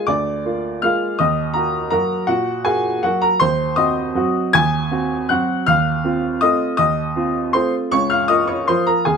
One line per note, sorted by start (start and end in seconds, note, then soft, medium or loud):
0.07 0.44 D2 medium
0.07 0.79 D5 medium
0.07 0.82 D6 medium
0.45 0.79 A#3 soft
0.45 0.79 F4 soft
0.82 1.16 G#3 soft
0.82 1.16 A#3 soft
0.82 1.16 F4 soft
0.82 1.17 F5 medium
0.82 1.19 F6 medium
1.19 1.54 D#2 medium
1.19 1.53 D#5 medium
1.19 1.55 D#6 medium
1.54 1.88 A#3 soft
1.54 1.88 F#4 soft
1.54 1.89 A#4 medium
1.54 1.89 A#5 medium
1.90 2.25 F#3 soft
1.90 2.25 A#3 soft
1.90 2.25 F#4 soft
1.90 2.26 A#4 medium
1.90 2.28 A#5 medium
2.27 2.64 A#2 medium
2.27 2.62 F#4 medium
2.27 2.65 F#5 medium
2.65 3.00 A#3 soft
2.65 3.00 F#4 soft
2.65 3.01 G#4 medium
2.65 3.03 G#5 medium
3.03 3.37 F#3 soft
3.03 3.37 A#3 soft
3.03 3.21 F#4 medium
3.03 3.22 F#5 medium
3.22 3.39 A#4 medium
3.22 3.40 A#5 medium
3.40 3.76 D#2 medium
3.40 3.75 C5 medium
3.40 3.77 C6 medium
3.76 4.11 C4 soft
3.76 4.12 F#4 soft
3.76 4.51 D#5 medium
3.76 4.54 D#6 medium
4.15 4.51 F#3 soft
4.15 4.51 C4 soft
4.15 4.51 F#4 medium
4.53 4.91 D#2 medium
4.53 5.26 G#5 medium
4.53 5.29 G#6 loud
4.91 5.26 C4 soft
4.91 5.26 F#4 soft
5.29 5.64 F#3 soft
5.29 5.64 C4 soft
5.29 5.64 F#4 soft
5.29 5.65 F#5 medium
5.29 5.67 F#6 medium
5.66 6.03 D#2 medium
5.66 6.38 F5 medium
5.66 6.41 F6 loud
6.04 6.38 C4 soft
6.04 6.38 F4 medium
6.41 6.75 A3 soft
6.41 6.75 C4 soft
6.41 6.75 F4 soft
6.41 6.76 D#5 medium
6.41 6.76 D#6 medium
6.77 7.14 D#2 medium
6.77 7.50 D#5 medium
6.77 7.53 D#6 medium
7.16 7.50 C4 soft
7.16 7.50 F4 soft
7.53 7.88 A3 soft
7.53 7.89 C4 soft
7.53 7.89 F4 soft
7.53 7.72 C5 medium
7.53 7.73 C6 medium
7.92 8.28 C#2 medium
7.92 8.09 C#5 medium
7.92 8.10 C#6 loud
8.10 8.28 F5 medium
8.10 8.29 F6 medium
8.28 8.64 A#3 soft
8.28 8.64 F4 soft
8.28 8.47 D#5 medium
8.28 8.48 D#6 medium
8.47 8.67 C#5 medium
8.47 8.68 C#6 medium
8.68 9.03 F3 soft
8.68 9.03 A#3 soft
8.68 9.03 F4 soft
8.68 8.86 C5 medium
8.68 8.87 C6 medium
8.87 9.05 A#4 medium
8.87 9.06 A#5 medium
9.05 9.17 D#2 medium
9.05 9.17 G#4 medium
9.05 9.17 G#5 medium